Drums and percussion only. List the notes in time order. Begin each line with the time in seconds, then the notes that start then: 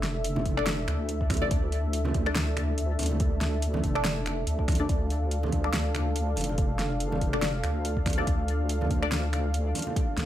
0.03 snare, closed hi-hat
0.24 closed hi-hat
0.36 high conga, low conga
0.45 kick, closed hi-hat
0.57 finger snap
0.67 snare, closed hi-hat
0.88 finger snap, closed hi-hat, high conga
1.09 closed hi-hat
1.21 kick
1.30 finger snap, kick, closed hi-hat, open hi-hat, low conga
1.37 closed hi-hat
1.42 high conga
1.51 kick, closed hi-hat
1.72 closed hi-hat
1.93 closed hi-hat
2.05 high conga, low conga
2.14 kick, closed hi-hat
2.26 finger snap
2.36 snare, closed hi-hat
2.57 finger snap, closed hi-hat, high conga
2.78 closed hi-hat
2.99 closed hi-hat, open hi-hat, low conga
3.06 closed hi-hat
3.11 high conga
3.20 kick, closed hi-hat
3.41 snare, closed hi-hat
3.62 closed hi-hat
3.74 high conga, low conga
3.84 kick, closed hi-hat
3.95 finger snap
4.05 snare, closed hi-hat
4.26 finger snap, closed hi-hat, high conga
4.47 closed hi-hat
4.59 kick
4.68 finger snap, kick, open hi-hat, low conga
4.72 closed hi-hat
4.75 closed hi-hat, high conga
4.89 kick, closed hi-hat
5.10 closed hi-hat
5.31 closed hi-hat
5.43 high conga, low conga
5.52 kick, closed hi-hat
5.64 finger snap
5.74 snare, closed hi-hat
5.95 finger snap, closed hi-hat, high conga
6.16 closed hi-hat
6.36 open hi-hat, low conga
6.41 closed hi-hat
6.44 closed hi-hat
6.49 high conga
6.58 kick, closed hi-hat
6.79 snare, closed hi-hat
7.00 closed hi-hat
7.12 high conga, low conga
7.21 kick, closed hi-hat
7.33 finger snap
7.42 snare, closed hi-hat
7.64 finger snap, closed hi-hat, high conga
7.85 closed hi-hat
7.97 kick
8.06 finger snap, kick, open hi-hat, low conga
8.10 closed hi-hat
8.13 closed hi-hat
8.18 high conga
8.27 kick, closed hi-hat
8.48 closed hi-hat
8.69 closed hi-hat
8.81 high conga, low conga
8.91 kick, closed hi-hat
9.03 finger snap
9.12 snare, closed hi-hat
9.33 finger snap, closed hi-hat, high conga
9.54 closed hi-hat
9.75 open hi-hat, low conga
9.79 closed hi-hat
9.82 closed hi-hat
9.87 high conga
9.96 kick, closed hi-hat
10.18 snare, closed hi-hat